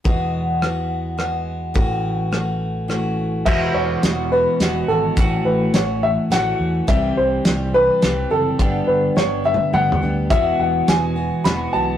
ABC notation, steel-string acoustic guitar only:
X:1
M:3/4
L:1/8
Q:1/4=105
K:Alyd
V:1 name="Steel-string acoustic guitar"
[E,,B,,E,G,B,F]2 [E,G,B,F]2 [E,G,B,F]2 | [A,,E,A,CF]2 [E,A,CF]2 [E,A,CF]2 | [E,,B,,E,G,B,F]2 [E,G,B,F] [E,G,B,F] [E,G,B,F] [E,G,B,F] | [A,,E,A,CF]2 [E,A,CF]2 [E,A,CF]2 |
[=C,E,=G,=C=G]2 [E,G,CG] [G,CG] [E,G,CG] [G,CG] | [=G,,=D,=G,B,=D=G]2 [G,B,DG] [G,B,DG] [G,B,DG] [G,B,DG] | [E,,B,,E,G,B,F]2 [E,G,B,F] [E,G,B,F] [E,G,B,F] [E,G,B,F] |]